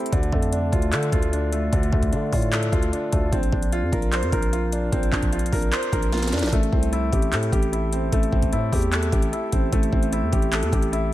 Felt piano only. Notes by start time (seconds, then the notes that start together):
Already playing: A3 C4 E4 G4 A4
0.12 D3
0.32 A3
0.53 D4
0.72 F4
0.93 A4
1.13 F4
1.33 D4
1.52 A3
1.72 D3
1.93 A3
2.12 D4
2.33 F4
2.52 A4
2.73 F4
2.92 D4
3.12 A3
3.32 C4
3.52 D4
3.72 F4
3.93 A#4
4.13 C5
4.33 A#4
4.53 F4
4.73 D4
4.93 C4
5.13 D4
5.33 F4
5.53 A#4
5.73 C5
5.93 A#4
6.13 F4
6.33 D4
6.53 A3
6.73 C4
6.93 E4
7.13 G4
7.33 A4
7.53 G4
7.73 E4
7.93 C4
8.13 A3
8.33 C4
8.53 E4
8.73 G4
8.93 A4
9.13 G4
9.33 E4
9.52 C4
9.72 A3
9.93 C4
10.13 E4
10.33 G4
10.53 A4
10.73 G4
10.93 E4